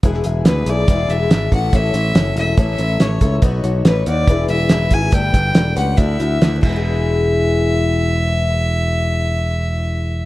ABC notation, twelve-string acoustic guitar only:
X:1
M:4/4
L:1/8
Q:1/4=140
K:Emix
V:1 name="Twelve-string acoustic guitar"
[E,,E,G,B,EG] [G,B,EG] [G,B,EG] [G,B,EG] [E,,E,G,B,EG] [G,B,EG] [G,B,EG] [CEA] | [A,,A,CEA] [CEA] [A,CEA] [CEA] [A,,A,CEA] [CEA] [A,CEA] [CEA] | [B,^DFc] [DFc] [B,DFc] [DFc] [E,B,EGB] [EGB] [B,EGB] [EGB] | [=G,A,D=GB] [DGB] [A,DGB] [DGB] [D,A,DEF] [DEF] [A,DEF] [E,,E,^G,B,E^G]- |
[E,,E,G,B,EG]8- | [E,,E,G,B,EG]8 |]